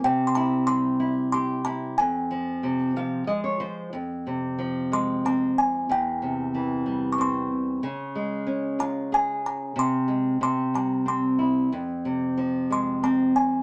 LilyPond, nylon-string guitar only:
\new Staff \with { instrumentName = "Nylon-string guitar" } { \clef bass \time 3/4 \key f \minor \tempo 4 = 93 << { r2. | r4. f''8 ees''16 des''16 c''8 | r2. | r2. |
r2. | r2. | r2. | } \\ { c8 e'8 g8 e'8 g'8 e'8 | f,8 f8 c8 f8 aes8 f8 | f,8 c8 f8 aes8 c'4 | e,8 c8 e8 g8 c'4 |
des8 aes8 des'8 f'8 aes'4 | c8 aes8 c8 g8 c'8 e'8 | f,8 c8 f8 aes8 c'4 | } >> }